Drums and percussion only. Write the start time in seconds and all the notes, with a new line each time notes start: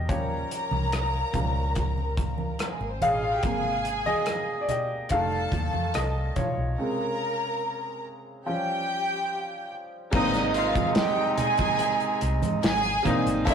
0.09 kick, closed hi-hat
0.51 closed hi-hat
0.71 high conga
0.92 cross-stick, closed hi-hat, muted conga
1.14 muted conga
1.33 kick, closed hi-hat, low conga
1.75 kick, closed hi-hat, muted conga
1.97 muted conga
2.17 kick, closed hi-hat
2.38 high conga
2.59 cross-stick, closed hi-hat
2.81 muted conga
3.02 closed hi-hat, high conga, low conga
3.43 kick, closed hi-hat, muted conga
3.64 muted conga
3.85 closed hi-hat
4.06 high conga
4.26 cross-stick, closed hi-hat
4.68 closed hi-hat, low conga
5.09 kick, closed hi-hat
5.32 muted conga
5.52 kick, closed hi-hat
5.73 high conga
5.94 cross-stick, closed hi-hat, muted conga
6.36 kick, closed hi-hat, high conga, low conga
10.12 kick, crash, muted conga
10.34 snare, closed hi-hat, muted conga
10.54 closed hi-hat
10.76 kick, closed hi-hat, high conga
10.95 snare, closed hi-hat, muted conga
11.38 closed hi-hat, low conga
11.57 kick, closed hi-hat
11.79 closed hi-hat, muted conga
12.00 closed hi-hat
12.21 closed hi-hat
12.42 closed hi-hat, high conga
12.63 snare, closed hi-hat, muted conga
12.84 closed hi-hat
13.05 kick, closed hi-hat, high conga, low conga
13.27 closed hi-hat
13.47 kick, closed hi-hat